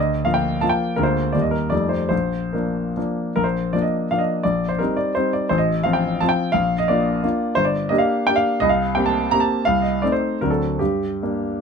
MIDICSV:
0, 0, Header, 1, 2, 480
1, 0, Start_track
1, 0, Key_signature, -2, "major"
1, 0, Tempo, 365854
1, 1284, Time_signature, 3, 2, 24, 8
1, 2257, Tempo, 414651
1, 3697, Tempo, 380952
1, 5137, Tempo, 346821
1, 9923, Key_signature, -2, "minor"
1, 12817, Tempo, 380228
1, 14257, Tempo, 417537
1, 15192, End_track
2, 0, Start_track
2, 0, Title_t, "Grand piano"
2, 0, Program_c, 0, 0
2, 0, Note_on_c, 0, 38, 50
2, 0, Note_on_c, 0, 75, 61
2, 152, Control_c, 0, 64, 127
2, 321, Note_off_c, 0, 38, 0
2, 325, Note_on_c, 0, 77, 66
2, 337, Note_on_c, 0, 53, 31
2, 338, Note_off_c, 0, 75, 0
2, 347, Note_on_c, 0, 58, 33
2, 349, Note_on_c, 0, 65, 39
2, 444, Note_on_c, 0, 79, 62
2, 453, Note_off_c, 0, 77, 0
2, 770, Note_off_c, 0, 53, 0
2, 775, Note_off_c, 0, 58, 0
2, 777, Note_off_c, 0, 65, 0
2, 804, Note_on_c, 0, 81, 67
2, 810, Note_off_c, 0, 79, 0
2, 815, Note_on_c, 0, 53, 39
2, 822, Note_on_c, 0, 58, 39
2, 830, Note_on_c, 0, 65, 40
2, 831, Control_c, 0, 64, 0
2, 911, Note_on_c, 0, 79, 68
2, 929, Note_off_c, 0, 81, 0
2, 1236, Note_off_c, 0, 53, 0
2, 1240, Note_off_c, 0, 58, 0
2, 1244, Note_off_c, 0, 65, 0
2, 1263, Note_on_c, 0, 70, 64
2, 1272, Note_off_c, 0, 79, 0
2, 1278, Note_on_c, 0, 38, 49
2, 1281, Note_on_c, 0, 56, 32
2, 1291, Note_on_c, 0, 58, 35
2, 1294, Note_on_c, 0, 65, 37
2, 1354, Note_on_c, 0, 72, 58
2, 1388, Note_off_c, 0, 70, 0
2, 1511, Control_c, 0, 64, 127
2, 1709, Note_off_c, 0, 56, 0
2, 1714, Note_off_c, 0, 58, 0
2, 1716, Note_off_c, 0, 65, 0
2, 1736, Note_off_c, 0, 72, 0
2, 1739, Note_on_c, 0, 74, 55
2, 1741, Note_off_c, 0, 38, 0
2, 1754, Note_on_c, 0, 55, 31
2, 1755, Note_on_c, 0, 39, 37
2, 1765, Note_on_c, 0, 63, 28
2, 1769, Note_on_c, 0, 58, 31
2, 1779, Control_c, 0, 64, 0
2, 1855, Note_on_c, 0, 75, 47
2, 1873, Note_off_c, 0, 74, 0
2, 1981, Note_on_c, 0, 70, 55
2, 1993, Note_off_c, 0, 75, 0
2, 2009, Control_c, 0, 64, 127
2, 2206, Note_off_c, 0, 55, 0
2, 2212, Note_off_c, 0, 63, 0
2, 2214, Note_off_c, 0, 58, 0
2, 2226, Note_on_c, 0, 74, 60
2, 2239, Note_on_c, 0, 41, 43
2, 2241, Note_off_c, 0, 39, 0
2, 2245, Note_off_c, 0, 70, 0
2, 2245, Note_on_c, 0, 55, 30
2, 2247, Note_on_c, 0, 57, 30
2, 2255, Note_on_c, 0, 63, 31
2, 2273, Control_c, 0, 64, 0
2, 2453, Note_on_c, 0, 72, 37
2, 2471, Note_off_c, 0, 74, 0
2, 2482, Control_c, 0, 64, 127
2, 2665, Note_off_c, 0, 72, 0
2, 2667, Note_off_c, 0, 55, 0
2, 2667, Note_off_c, 0, 57, 0
2, 2671, Note_off_c, 0, 63, 0
2, 2682, Note_on_c, 0, 72, 56
2, 2696, Note_off_c, 0, 41, 0
2, 2703, Note_on_c, 0, 34, 40
2, 2738, Control_c, 0, 64, 0
2, 2937, Control_c, 0, 64, 127
2, 3186, Note_off_c, 0, 34, 0
2, 3190, Note_off_c, 0, 72, 0
2, 3190, Note_on_c, 0, 70, 37
2, 3206, Note_on_c, 0, 58, 27
2, 3209, Note_on_c, 0, 53, 26
2, 3216, Note_on_c, 0, 62, 29
2, 3650, Note_off_c, 0, 58, 0
2, 3652, Note_off_c, 0, 53, 0
2, 3655, Note_off_c, 0, 62, 0
2, 3689, Note_off_c, 0, 70, 0
2, 3704, Note_on_c, 0, 53, 35
2, 3707, Note_on_c, 0, 58, 34
2, 3715, Note_on_c, 0, 62, 37
2, 3716, Control_c, 0, 64, 0
2, 4148, Note_off_c, 0, 53, 0
2, 4149, Note_off_c, 0, 58, 0
2, 4153, Note_off_c, 0, 62, 0
2, 4191, Note_on_c, 0, 70, 66
2, 4200, Note_on_c, 0, 34, 44
2, 4294, Note_on_c, 0, 72, 53
2, 4309, Note_off_c, 0, 70, 0
2, 4433, Control_c, 0, 64, 127
2, 4659, Note_off_c, 0, 34, 0
2, 4660, Note_on_c, 0, 74, 54
2, 4662, Note_off_c, 0, 72, 0
2, 4670, Note_on_c, 0, 53, 34
2, 4681, Note_on_c, 0, 62, 37
2, 4682, Note_on_c, 0, 58, 35
2, 4684, Control_c, 0, 64, 0
2, 4772, Note_on_c, 0, 75, 51
2, 4786, Note_off_c, 0, 74, 0
2, 5092, Note_off_c, 0, 53, 0
2, 5098, Note_off_c, 0, 58, 0
2, 5098, Note_off_c, 0, 62, 0
2, 5128, Note_off_c, 0, 75, 0
2, 5139, Note_on_c, 0, 77, 59
2, 5151, Note_on_c, 0, 58, 29
2, 5154, Note_on_c, 0, 53, 33
2, 5165, Note_on_c, 0, 62, 35
2, 5245, Note_on_c, 0, 75, 56
2, 5260, Note_off_c, 0, 77, 0
2, 5569, Note_off_c, 0, 58, 0
2, 5570, Note_off_c, 0, 53, 0
2, 5576, Note_off_c, 0, 62, 0
2, 5590, Note_on_c, 0, 74, 65
2, 5601, Note_off_c, 0, 75, 0
2, 5613, Note_on_c, 0, 34, 43
2, 5849, Control_c, 0, 64, 127
2, 5939, Note_on_c, 0, 72, 52
2, 5955, Note_off_c, 0, 74, 0
2, 6076, Note_on_c, 0, 70, 56
2, 6078, Note_off_c, 0, 72, 0
2, 6079, Note_off_c, 0, 34, 0
2, 6091, Note_on_c, 0, 55, 35
2, 6102, Note_on_c, 0, 60, 37
2, 6103, Control_c, 0, 64, 0
2, 6107, Note_on_c, 0, 63, 37
2, 6326, Note_on_c, 0, 74, 55
2, 6334, Note_off_c, 0, 70, 0
2, 6535, Note_off_c, 0, 55, 0
2, 6540, Note_off_c, 0, 60, 0
2, 6543, Note_off_c, 0, 63, 0
2, 6576, Note_off_c, 0, 74, 0
2, 6577, Note_on_c, 0, 72, 64
2, 6600, Note_on_c, 0, 55, 35
2, 6604, Note_on_c, 0, 60, 33
2, 6607, Note_on_c, 0, 63, 37
2, 6818, Note_off_c, 0, 72, 0
2, 6833, Note_on_c, 0, 74, 55
2, 7019, Note_off_c, 0, 55, 0
2, 7021, Note_off_c, 0, 60, 0
2, 7023, Note_off_c, 0, 63, 0
2, 7056, Note_on_c, 0, 72, 67
2, 7063, Note_off_c, 0, 74, 0
2, 7072, Note_on_c, 0, 33, 52
2, 7175, Note_off_c, 0, 72, 0
2, 7176, Note_on_c, 0, 75, 64
2, 7343, Control_c, 0, 64, 127
2, 7528, Note_on_c, 0, 77, 65
2, 7543, Note_off_c, 0, 33, 0
2, 7551, Note_off_c, 0, 75, 0
2, 7556, Note_on_c, 0, 53, 40
2, 7557, Note_on_c, 0, 60, 39
2, 7562, Note_on_c, 0, 65, 44
2, 7664, Note_on_c, 0, 79, 59
2, 7668, Note_off_c, 0, 77, 0
2, 8000, Note_off_c, 0, 53, 0
2, 8000, Note_off_c, 0, 60, 0
2, 8003, Note_off_c, 0, 65, 0
2, 8039, Note_off_c, 0, 79, 0
2, 8041, Note_on_c, 0, 81, 68
2, 8064, Note_on_c, 0, 53, 37
2, 8064, Note_on_c, 0, 65, 40
2, 8065, Control_c, 0, 64, 0
2, 8066, Note_on_c, 0, 60, 37
2, 8154, Note_on_c, 0, 79, 69
2, 8162, Note_off_c, 0, 81, 0
2, 8475, Note_off_c, 0, 53, 0
2, 8475, Note_off_c, 0, 65, 0
2, 8476, Note_off_c, 0, 60, 0
2, 8478, Note_on_c, 0, 77, 76
2, 8503, Note_on_c, 0, 34, 51
2, 8507, Note_off_c, 0, 79, 0
2, 8789, Control_c, 0, 64, 127
2, 8841, Note_on_c, 0, 75, 69
2, 8847, Note_off_c, 0, 77, 0
2, 8969, Note_off_c, 0, 34, 0
2, 8976, Note_off_c, 0, 75, 0
2, 8976, Note_on_c, 0, 74, 65
2, 8994, Note_on_c, 0, 62, 41
2, 8996, Note_on_c, 0, 58, 43
2, 9004, Note_on_c, 0, 65, 46
2, 9423, Note_off_c, 0, 58, 0
2, 9423, Note_off_c, 0, 62, 0
2, 9428, Note_off_c, 0, 65, 0
2, 9465, Note_on_c, 0, 62, 40
2, 9467, Note_on_c, 0, 58, 39
2, 9480, Note_on_c, 0, 65, 45
2, 9486, Control_c, 0, 64, 0
2, 9876, Note_off_c, 0, 62, 0
2, 9877, Note_off_c, 0, 58, 0
2, 9884, Note_off_c, 0, 65, 0
2, 9904, Note_on_c, 0, 72, 82
2, 9917, Note_off_c, 0, 74, 0
2, 9926, Note_on_c, 0, 31, 55
2, 10026, Note_off_c, 0, 72, 0
2, 10035, Note_on_c, 0, 74, 58
2, 10145, Control_c, 0, 64, 127
2, 10374, Note_on_c, 0, 75, 70
2, 10384, Note_off_c, 0, 31, 0
2, 10392, Note_on_c, 0, 58, 44
2, 10397, Note_off_c, 0, 74, 0
2, 10402, Note_on_c, 0, 62, 44
2, 10406, Note_on_c, 0, 67, 48
2, 10410, Control_c, 0, 64, 0
2, 10502, Note_on_c, 0, 77, 67
2, 10515, Note_off_c, 0, 75, 0
2, 10855, Note_off_c, 0, 58, 0
2, 10861, Note_off_c, 0, 62, 0
2, 10863, Note_off_c, 0, 67, 0
2, 10893, Note_on_c, 0, 79, 82
2, 10897, Note_off_c, 0, 77, 0
2, 10906, Note_on_c, 0, 58, 38
2, 10919, Note_on_c, 0, 67, 44
2, 10925, Note_on_c, 0, 62, 38
2, 11019, Note_on_c, 0, 77, 73
2, 11023, Note_off_c, 0, 79, 0
2, 11335, Note_off_c, 0, 58, 0
2, 11342, Note_off_c, 0, 67, 0
2, 11345, Note_off_c, 0, 62, 0
2, 11357, Note_on_c, 0, 75, 80
2, 11374, Note_on_c, 0, 36, 57
2, 11378, Note_off_c, 0, 77, 0
2, 11484, Note_on_c, 0, 77, 65
2, 11488, Note_off_c, 0, 75, 0
2, 11639, Control_c, 0, 64, 127
2, 11838, Note_on_c, 0, 79, 67
2, 11844, Note_off_c, 0, 36, 0
2, 11855, Note_off_c, 0, 77, 0
2, 11862, Note_on_c, 0, 58, 41
2, 11862, Note_on_c, 0, 60, 41
2, 11868, Note_on_c, 0, 67, 47
2, 11974, Note_off_c, 0, 79, 0
2, 11988, Note_on_c, 0, 81, 68
2, 12298, Note_off_c, 0, 58, 0
2, 12298, Note_off_c, 0, 60, 0
2, 12301, Note_off_c, 0, 67, 0
2, 12342, Note_on_c, 0, 82, 80
2, 12348, Note_off_c, 0, 81, 0
2, 12358, Control_c, 0, 64, 0
2, 12360, Note_on_c, 0, 60, 37
2, 12366, Note_on_c, 0, 58, 39
2, 12366, Note_on_c, 0, 67, 41
2, 12463, Note_off_c, 0, 82, 0
2, 12465, Note_on_c, 0, 81, 70
2, 12778, Note_off_c, 0, 60, 0
2, 12781, Note_off_c, 0, 58, 0
2, 12781, Note_off_c, 0, 67, 0
2, 12810, Note_on_c, 0, 77, 80
2, 12818, Note_off_c, 0, 81, 0
2, 12833, Note_on_c, 0, 36, 52
2, 13023, Note_on_c, 0, 75, 50
2, 13027, Control_c, 0, 64, 127
2, 13034, Note_off_c, 0, 77, 0
2, 13267, Note_off_c, 0, 75, 0
2, 13268, Note_off_c, 0, 36, 0
2, 13277, Note_on_c, 0, 74, 62
2, 13290, Note_on_c, 0, 57, 36
2, 13292, Note_on_c, 0, 60, 36
2, 13294, Control_c, 0, 64, 0
2, 13295, Note_on_c, 0, 63, 42
2, 13399, Note_off_c, 0, 74, 0
2, 13405, Note_on_c, 0, 72, 56
2, 13724, Note_off_c, 0, 57, 0
2, 13725, Note_off_c, 0, 60, 0
2, 13727, Note_off_c, 0, 63, 0
2, 13768, Note_off_c, 0, 72, 0
2, 13770, Note_on_c, 0, 70, 59
2, 13783, Note_on_c, 0, 54, 31
2, 13784, Note_on_c, 0, 60, 32
2, 13786, Note_on_c, 0, 38, 41
2, 13792, Note_on_c, 0, 62, 32
2, 13887, Note_on_c, 0, 69, 53
2, 13890, Note_off_c, 0, 70, 0
2, 14010, Control_c, 0, 64, 127
2, 14219, Note_off_c, 0, 54, 0
2, 14220, Note_off_c, 0, 60, 0
2, 14224, Note_off_c, 0, 62, 0
2, 14251, Note_on_c, 0, 67, 51
2, 14255, Note_off_c, 0, 38, 0
2, 14259, Note_off_c, 0, 69, 0
2, 14260, Note_on_c, 0, 43, 42
2, 14275, Control_c, 0, 64, 0
2, 14506, Control_c, 0, 64, 127
2, 14725, Note_off_c, 0, 43, 0
2, 14743, Note_on_c, 0, 55, 33
2, 14753, Note_on_c, 0, 58, 31
2, 14755, Note_on_c, 0, 62, 35
2, 15173, Note_off_c, 0, 55, 0
2, 15178, Note_off_c, 0, 58, 0
2, 15179, Note_off_c, 0, 62, 0
2, 15192, Note_off_c, 0, 67, 0
2, 15192, End_track
0, 0, End_of_file